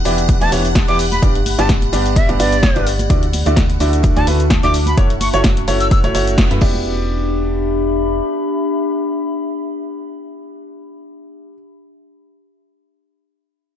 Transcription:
Already playing: ambient pad D4 G4 E5 A5 B5, string machine F#5
0.05 fm bass E1, upright piano E3 B3 E4 G4 D5, open hi-hat, tambourine, shaker
0.17 closed hi-hat, tambourine, shaker
0.28 kick, closed hi-hat, tambourine, shaker
0.41 fm bass E1, upright piano E3 B3 E4 G4 D5, flute A5, closed hi-hat, tambourine, high conga
0.52 fm bass E1, upright piano E3 B3 E4 G4 C#5, open hi-hat, tambourine, shaker
0.65 closed hi-hat, tambourine, shaker
0.75 kick, snare, closed hi-hat, tambourine, high conga, shaker
0.88 fm bass E1, upright piano E3 B3 E4 G4 D5, flute D6, closed hi-hat, tambourine
0.99 open hi-hat, tambourine, shaker
1.12 flute B5, closed hi-hat, tambourine, high conga, shaker
1.22 fm bass G1, upright piano G2 B3 D4 G4 D5, ambient pad B3, kick, closed hi-hat, tambourine, shaker
1.35 closed hi-hat, tambourine
1.46 open hi-hat, tambourine, high conga, shaker
1.58 fm bass G1, upright piano G2 B3 D4 G4 D5, flute A5, closed hi-hat, tambourine, shaker
1.65 ambient pad D5, snare
1.69 kick, closed hi-hat, tambourine, shaker
1.82 closed hi-hat, tambourine, high conga
1.93 fm bass G1, upright piano G2 B3 D4 G4 D5, open hi-hat, tambourine, shaker
2.06 closed hi-hat, tambourine, shaker
2.16 flute E5, kick, closed hi-hat, tambourine, shaker
2.29 fm bass G1, upright piano G2 B3 D4 G4 D5, closed hi-hat, tambourine, high conga
2.40 fm bass G1, upright piano G2 B3 D4 G4 B4, flute D5, open hi-hat, tambourine, shaker
2.52 closed hi-hat, tambourine, shaker
2.63 kick, snare, closed hi-hat, tambourine, high conga, shaker
2.76 fm bass G1, upright piano G2 B3 D4 G4 D5, closed hi-hat, tambourine
2.87 open hi-hat, tambourine, shaker
2.99 closed hi-hat, tambourine, high conga, shaker
3.10 fm bass D2, upright piano D3 A3 E4 F#4 D5, ambient pad D4, kick, closed hi-hat, tambourine, shaker
3.23 closed hi-hat, tambourine
3.28 ambient pad E5
3.33 open hi-hat, tambourine, high conga, shaker
3.43 fm bass D2, upright piano D3 A3 E4 F#4 D5, ambient pad F#4, closed hi-hat, tambourine, shaker
3.56 kick, snare, closed hi-hat, tambourine, shaker
3.70 closed hi-hat, tambourine, high conga
3.80 fm bass D2, upright piano D3 A3 E4 F#4 D5, open hi-hat, tambourine, shaker
3.90 ambient pad A5, closed hi-hat, tambourine, shaker
4.03 kick, closed hi-hat, tambourine, shaker
4.16 fm bass D2, upright piano D3 A3 E4 F#4 D5, flute A5, closed hi-hat, tambourine, high conga
4.27 fm bass D2, upright piano D3 A3 E4 F#4 B4, open hi-hat, tambourine, shaker
4.40 closed hi-hat, tambourine, shaker
4.50 kick, snare, closed hi-hat, tambourine, high conga, shaker
4.63 fm bass D2, upright piano D3 A3 E4 F#4 D5, flute D6, closed hi-hat, tambourine
4.74 open hi-hat, tambourine, shaker
4.86 flute B5, closed hi-hat, tambourine, high conga, shaker
4.97 fm bass F#1, upright piano A3 E4 F#4 C#5, ambient pad C#4, kick, closed hi-hat, tambourine, shaker
5.10 closed hi-hat, tambourine
5.21 flute C#6, open hi-hat, tambourine, high conga, shaker
5.34 fm bass F#1, upright piano A3 E4 F#4 C#5, flute C#6, closed hi-hat, tambourine, shaker
5.44 kick, snare, closed hi-hat, tambourine, shaker
5.57 closed hi-hat, tambourine, high conga
5.68 fm bass F#1, upright piano A3 E4 F#4 C#5, open hi-hat, tambourine, shaker
5.80 flute E6, closed hi-hat, tambourine, shaker
5.91 flute E6, kick, closed hi-hat, tambourine, shaker
6.04 fm bass F#1, upright piano A3 E4 F#4 C#5, closed hi-hat, tambourine, high conga
6.15 fm bass F#1, upright piano A3 E4 F#4 C#5, open hi-hat, tambourine, shaker
6.27 closed hi-hat, tambourine, shaker
6.38 kick, snare, closed hi-hat, tambourine, high conga, shaker
6.51 fm bass F#2, upright piano A3 E4 F#4 B4, closed hi-hat, tambourine
6.61 fm bass E1, upright piano B3 E4 G4 D5, ambient pad D4, kick, crash, tambourine
6.69 ambient pad G4
6.74 tambourine, high conga
7.00 ambient pad E5
7.06 ambient pad B5

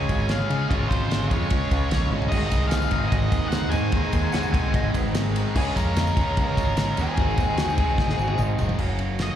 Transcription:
Already playing: overdriven electric guitar C#3 G#3 C#4 F4 G#4, lead electric guitar C#5 G#5
0.09 fingered electric bass G#1, kick, ride
0.29 distorted electric guitar C#3 G#3 C#4, lead electric guitar G#4 F5, snare, ride
0.50 fingered electric bass C#3, overdriven electric guitar C#3 G#3 C#4, ride
0.68 fingered electric bass G#1, overdriven electric guitar C#3 G#3 C#4 F4, lead electric guitar F4 C#5, kick, ride
0.73 overdriven electric guitar C#4 G#4
0.88 fingered electric bass G#1, lead electric guitar F4 C5, kick, ride
1.11 snare, ride
1.28 fingered electric bass F2, overdriven electric guitar C#3 G#3 C#4 F4 G#4, lead electric guitar F4 C#5, kick, ride
1.50 fingered electric bass C#2, kick, ride
1.71 fingered electric bass C#2, kick, ride
1.91 fingered electric bass A#1, distorted electric guitar C#3 G#3 C#4, snare, ride
2.10 fingered electric bass G#1, overdriven electric guitar G#3 C#4, high tom
2.15 overdriven electric guitar C#3
2.22 floor tom
2.29 fingered electric bass G#1, overdriven electric guitar G#2 D#3 G#3, lead electric guitar G#4 D#5, kick, crash
2.33 overdriven electric guitar G#3 C4 D#4 G#4
2.44 tambourine
2.51 fingered electric bass C2, kick, ride, tambourine
2.63 tambourine
2.67 lead electric guitar G#4 F5, ride
2.72 snare, tambourine
2.82 tambourine
2.91 fingered electric bass G#1, overdriven electric guitar G#2 D#3 G#3 C4 D#4 G#4, kick, ride
3.07 lead electric guitar G#4 D#5
3.12 fingered electric bass G#1, kick, ride
3.32 fingered electric bass D#2, kick, ride, tambourine
3.43 tambourine
3.48 lead electric guitar C5 F#5, ride
3.52 distorted electric guitar G#2 D#3 G#3, snare, tambourine
3.70 fingered electric bass G#2, overdriven electric guitar G#3, lead electric guitar C5 G#5, ride, tambourine
3.75 overdriven electric guitar G#2 D#3
3.92 fingered electric bass D#2, overdriven electric guitar G#2 D#3 G#3 C4 D#4 G#4, kick, ride
4.03 tambourine
4.12 fingered electric bass D#2, kick, ride, tambourine
4.23 tambourine
4.32 electric slide guitar F#5, snare, ride, tambourine
4.43 tambourine
4.53 fingered electric bass C2, overdriven electric guitar G#2 D#3 G#3 C4 D#4 G#4, kick, ride, tambourine
4.74 fingered electric bass G#1, electric slide guitar D#5, kick, ride
4.94 fingered electric bass G#1, electric slide guitar B4, kick, ride, tambourine
5.05 tambourine
5.13 distorted electric guitar G#2 D#3 G#3, electric slide guitar G#4, snare, ride, tambourine
5.27 tambourine
5.35 overdriven electric guitar G#2 D#3 G#3, ride, tambourine
5.55 fingered electric bass C#2, overdriven electric guitar C#3 G#3 C#4 F4 G#4, lead electric guitar C#4 G#4, kick, crash
5.68 tambourine
5.76 fingered electric bass F2, lead electric guitar C#4 A#4, kick, ride, tambourine
5.96 snare, ride, tambourine
6.07 tambourine
6.16 fingered electric bass C#2, overdriven electric guitar C#3 G#3 C#4 F4 G#4, kick, ride
6.37 fingered electric bass C#2, kick, ride
6.41 lead electric guitar C#4 A#4
6.57 fingered electric bass G#1, kick, ride, tambourine
6.68 tambourine
6.77 distorted electric guitar C#3 G#3 C#4, snare, ride, tambourine
6.97 fingered electric bass D#2, overdriven electric guitar C#3 G#3 C#4, ride, tambourine
7.01 lead electric guitar C4 G#4
7.17 fingered electric bass G#1, overdriven electric guitar G#2 D#3 G#3 C4 D#4 G#4, kick, ride, tambourine
7.31 tambourine
7.37 fingered electric bass D#2, kick, ride, tambourine
7.50 tambourine
7.57 electric slide guitar F#4, snare, ride, tambourine
7.70 electric slide guitar D#4, tambourine
7.78 fingered electric bass C2, overdriven electric guitar G#2 D#3 G#3 C4 D#4 G#4, kick, ride, tambourine
7.85 electric slide guitar G#4
7.90 tambourine
7.98 fingered electric bass G#1, electric slide guitar D#5, kick, snare, tambourine
8.09 electric slide guitar G#4, snare
8.19 fingered electric bass G#1, tambourine
8.24 electric slide guitar F#4, high tom
8.29 tambourine
8.38 fingered electric bass G#1, distorted electric guitar G#2 D#3 G#3, electric slide guitar D#4, mid tom, tambourine
8.58 fingered electric bass F#1, overdriven electric guitar G#2 D#3 G#3, floor tom, tambourine
8.69 floor tom, tambourine
8.78 fingered electric bass F#1, distorted electric guitar F#2 C#3, overdriven electric guitar F#3 A#3 C#4 F#4, kick, crash
8.99 distorted electric guitar F#2 C#3, ride
9.19 distorted electric guitar F#2 C#3, lead electric guitar D#5, snare, ride

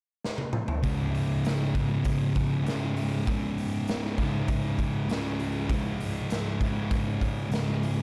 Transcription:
0.25 snare
0.38 high tom
0.53 mid tom
0.68 floor tom
0.83 distorted electric guitar C#2 G#2 C#3, kick, open hi-hat
1.15 open hi-hat
1.45 snare, open hi-hat
1.75 distorted electric guitar C#2 G#2 C#3, kick, open hi-hat
2.05 kick, open hi-hat
2.35 kick, open hi-hat
2.66 distorted electric guitar C#2 G#2 C#3, snare, open hi-hat
2.97 open hi-hat
3.27 distorted electric guitar C#2 G#2 C#3, kick, open hi-hat
3.58 open hi-hat
3.88 snare, open hi-hat
4.05 snare
4.18 distorted electric guitar G#2 C#3, kick, open hi-hat
4.22 distorted electric guitar C#2
4.48 kick, open hi-hat
4.79 kick, open hi-hat
5.09 distorted electric guitar C#2 G#2 C#3, snare, open hi-hat
5.39 open hi-hat
5.69 distorted electric guitar C#2 G#2 C#3, kick, open hi-hat
6.00 open hi-hat
6.30 snare, open hi-hat
6.61 distorted electric guitar C#2 G#2 C#3, kick, open hi-hat
6.91 kick, open hi-hat
7.21 kick, open hi-hat
7.50 distorted electric guitar C#2 G#2 C#3, snare, open hi-hat
7.83 open hi-hat

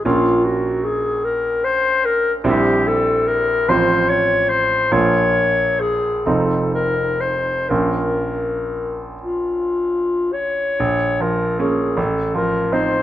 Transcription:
0.05 grand piano A#1 A#3 C#4 F4, clarinet F4
0.45 clarinet F#4
0.84 clarinet G#4
1.25 clarinet A#4
1.64 clarinet C5
2.05 clarinet A#4
2.44 grand piano A#1 G3 C4 E4, clarinet G4
2.87 clarinet A4
3.28 clarinet A#4
3.68 grand piano A1 F3 C4 F4, clarinet C5
4.09 clarinet C#5
4.50 clarinet C5
4.92 grand piano A#1 F3 A#3 F4, clarinet C#5
5.80 clarinet G#4
6.26 grand piano F1 F3 C4 D#4, clarinet A4
6.74 clarinet A#4
7.20 clarinet C5
7.69 grand piano A#1 F3 A#3 C#4, clarinet A#4
9.23 clarinet F4
10.33 clarinet C#5
10.80 grand piano A#1
11.20 grand piano F3, clarinet A#4
11.59 grand piano A#3 C#4, clarinet G#4
11.97 grand piano A1, clarinet A4
12.34 grand piano F3, clarinet A#4
12.72 grand piano C4 D#4, clarinet C5

